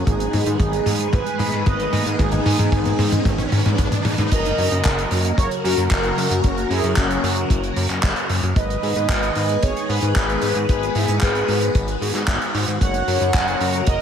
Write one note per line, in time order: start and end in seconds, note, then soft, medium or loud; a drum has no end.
0.00 4.28 G#4 medium
0.00 riser medium
0.06 0.28 G#1 loud
0.06 4.27 D#3 medium
0.06 4.28 G#3 medium
0.06 4.27 B3 medium
0.06 0.57 D#4 medium
0.06 0.59 G#4 loud
0.06 4.27 B4 medium
0.06 kick loud
0.06 closed hi-hat medium
0.06 mid tom medium
0.20 closed hi-hat medium
0.33 0.44 G#2 loud
0.33 open hi-hat loud
0.33 mid tom medium
0.46 0.57 G#2 medium
0.46 closed hi-hat medium
0.60 0.81 G#1 medium
0.60 1.10 D#4 medium
0.60 1.13 G#4 medium
0.60 kick loud
0.60 closed hi-hat medium
0.60 mid tom medium
0.73 closed hi-hat medium
0.86 1.08 G#2 medium
0.86 open hi-hat loud
0.86 mid tom medium
0.99 closed hi-hat medium
1.13 1.24 G#1 loud
1.13 1.63 G#4 medium
1.13 1.66 B4 loud
1.13 kick loud
1.13 closed hi-hat medium
1.13 mid tom medium
1.27 closed hi-hat medium
1.39 1.50 G#2 loud
1.39 open hi-hat loud
1.39 mid tom medium
1.52 1.64 G#2 loud
1.52 closed hi-hat medium
1.66 1.88 G#1 loud
1.66 2.16 B4 medium
1.66 2.21 D#5 loud
1.66 kick loud
1.66 closed hi-hat medium
1.66 mid tom medium
1.80 closed hi-hat medium
1.93 2.03 G#2 medium
1.93 open hi-hat loud
1.93 mid tom medium
2.06 2.17 G#2 medium
2.06 closed hi-hat medium
2.19 2.41 G#1 loud
2.19 3.75 D#4 medium
2.19 3.75 G#4 loud
2.19 kick loud
2.19 closed hi-hat medium
2.19 mid tom medium
2.32 closed hi-hat medium
2.32 mid tom medium
2.46 2.56 G#2 loud
2.46 open hi-hat loud
2.46 mid tom medium
2.59 2.70 G#2 medium
2.59 closed hi-hat medium
2.59 mid tom medium
2.72 2.94 G#1 medium
2.72 kick loud
2.72 closed hi-hat medium
2.72 mid tom loud
2.85 closed hi-hat medium
2.85 mid tom medium
2.99 3.20 G#2 medium
2.99 open hi-hat loud
2.99 mid tom medium
3.12 closed hi-hat medium
3.12 mid tom medium
3.25 3.47 G#1 medium
3.25 kick loud
3.25 closed hi-hat medium
3.25 mid tom loud
3.38 closed hi-hat medium
3.38 mid tom loud
3.52 3.63 G#2 medium
3.52 open hi-hat medium
3.52 mid tom medium
3.65 3.76 G#2 medium
3.65 closed hi-hat medium
3.65 mid tom medium
3.78 3.89 G#1 medium
3.78 kick loud
3.78 closed hi-hat medium
3.78 mid tom loud
3.92 closed hi-hat medium
3.92 mid tom loud
4.05 4.16 G#2 medium
4.05 open hi-hat loud
4.05 mid tom loud
4.18 4.29 G#2 medium
4.18 closed hi-hat medium
4.18 mid tom medium
4.32 4.53 F#1 loud
4.32 8.52 C#3 medium
4.32 8.52 F#3 medium
4.32 8.52 A#3 medium
4.32 8.52 F#4 medium
4.32 8.52 A#4 medium
4.32 5.34 A#4 loud
4.32 5.34 D#5 loud
4.32 kick loud
4.32 closed hi-hat loud
4.32 crash loud
4.46 closed hi-hat medium
4.58 4.69 F#2 loud
4.58 open hi-hat loud
4.71 4.82 F#2 medium
4.71 closed hi-hat medium
4.85 5.06 F#1 medium
4.85 kick loud
4.85 clap loud
4.85 closed hi-hat loud
4.99 closed hi-hat medium
5.11 5.33 F#2 medium
5.11 open hi-hat loud
5.25 closed hi-hat medium
5.37 5.48 F#1 loud
5.37 5.50 A#4 medium
5.37 5.49 C#5 loud
5.37 kick loud
5.37 closed hi-hat loud
5.51 closed hi-hat medium
5.64 5.75 F#2 loud
5.64 5.90 F#4 medium
5.64 5.89 A#4 medium
5.64 open hi-hat loud
5.78 5.88 F#2 loud
5.78 closed hi-hat medium
5.90 6.12 F#1 loud
5.90 6.41 F#4 medium
5.90 6.45 A#4 loud
5.90 kick loud
5.90 clap loud
5.90 closed hi-hat loud
6.03 closed hi-hat medium
6.17 6.28 F#2 medium
6.17 open hi-hat loud
6.31 6.41 F#2 medium
6.31 closed hi-hat medium
6.44 6.65 F#1 loud
6.44 6.69 C#4 medium
6.44 6.71 F#4 loud
6.44 kick loud
6.44 closed hi-hat medium
6.58 closed hi-hat medium
6.70 6.81 F#2 loud
6.70 6.96 E4 medium
6.70 6.98 G#4 medium
6.70 open hi-hat medium
6.84 6.94 F#2 loud
6.84 closed hi-hat medium
6.96 7.18 F#1 medium
6.96 8.00 C#4 medium
6.96 7.99 F#4 medium
6.96 kick loud
6.96 clap loud
6.96 closed hi-hat medium
7.11 closed hi-hat medium
7.23 7.45 F#2 medium
7.23 open hi-hat loud
7.36 closed hi-hat medium
7.50 7.71 F#1 medium
7.50 kick loud
7.50 closed hi-hat loud
7.64 closed hi-hat medium
7.76 7.87 F#2 medium
7.76 open hi-hat loud
7.90 8.01 F#2 medium
7.90 clap soft
7.90 closed hi-hat medium
8.03 8.14 F#1 loud
8.03 kick loud
8.03 clap loud
8.03 closed hi-hat medium
8.16 closed hi-hat medium
8.29 8.40 F#2 medium
8.29 open hi-hat loud
8.43 8.54 F#2 loud
8.43 closed hi-hat medium
8.56 8.78 G#1 loud
8.56 12.77 D#3 medium
8.56 12.77 G#3 medium
8.56 12.77 B3 medium
8.56 10.67 G#4 medium
8.56 12.77 B4 medium
8.56 9.59 B4 loud
8.56 9.66 D#5 loud
8.56 kick loud
8.56 closed hi-hat medium
8.70 closed hi-hat medium
8.83 8.94 G#2 loud
8.83 open hi-hat loud
8.96 9.07 G#2 loud
8.96 closed hi-hat medium
9.09 9.30 G#1 medium
9.09 kick loud
9.09 clap loud
9.09 closed hi-hat loud
9.23 closed hi-hat medium
9.35 9.57 G#2 medium
9.35 open hi-hat loud
9.49 closed hi-hat medium
9.63 9.73 G#1 loud
9.63 9.88 G#4 medium
9.63 9.90 C#5 loud
9.63 kick loud
9.63 closed hi-hat loud
9.77 closed hi-hat medium
9.89 10.00 G#2 loud
9.89 10.14 G#4 medium
9.89 10.15 B4 loud
9.89 open hi-hat loud
10.03 10.13 G#2 loud
10.03 closed hi-hat medium
10.16 10.37 G#1 loud
10.16 10.66 G#4 medium
10.16 10.68 B4 loud
10.16 kick loud
10.16 clap loud
10.16 closed hi-hat medium
10.29 closed hi-hat medium
10.42 10.53 G#2 medium
10.42 open hi-hat loud
10.55 10.66 G#2 medium
10.55 closed hi-hat medium
10.69 10.90 G#1 loud
10.69 14.02 F#4 medium
10.69 10.94 G#4 medium
10.69 10.96 B4 loud
10.69 kick loud
10.69 closed hi-hat loud
10.83 closed hi-hat medium
10.95 11.06 G#2 loud
10.95 11.20 E4 medium
10.95 11.22 G#4 medium
10.95 open hi-hat loud
11.08 11.19 G#2 medium
11.08 closed hi-hat medium
11.21 11.43 G#1 medium
11.21 12.25 G#4 medium
11.21 12.24 B4 loud
11.21 kick loud
11.21 clap loud
11.21 closed hi-hat medium
11.35 closed hi-hat medium
11.48 11.70 G#2 medium
11.48 open hi-hat loud
11.61 closed hi-hat medium
11.75 11.96 G#1 medium
11.75 kick loud
11.75 closed hi-hat medium
11.88 closed hi-hat medium
12.02 12.12 G#2 medium
12.02 open hi-hat loud
12.15 12.25 G#2 medium
12.15 clap soft
12.15 closed hi-hat medium
12.27 12.38 G#1 medium
12.27 kick loud
12.27 clap loud
12.27 closed hi-hat medium
12.42 closed hi-hat medium
12.55 12.65 G#2 medium
12.55 open hi-hat loud
12.68 12.79 G#2 loud
12.68 closed hi-hat soft
12.81 13.02 F#1 loud
12.81 14.02 C#3 medium
12.81 14.02 F#3 medium
12.81 14.02 A#3 medium
12.81 14.02 A#4 medium
12.81 13.84 C#5 loud
12.81 13.91 F#5 loud
12.81 kick loud
12.81 closed hi-hat loud
12.94 closed hi-hat medium
13.08 13.18 F#2 loud
13.08 open hi-hat loud
13.21 13.32 F#2 medium
13.21 closed hi-hat medium
13.34 13.55 F#1 medium
13.34 kick loud
13.34 clap loud
13.34 closed hi-hat loud
13.48 closed hi-hat soft
13.61 13.82 F#2 medium
13.61 open hi-hat loud
13.73 closed hi-hat medium
13.87 13.98 F#1 loud
13.87 14.02 A#4 medium
13.87 14.02 D#5 loud
13.87 kick loud
13.87 closed hi-hat loud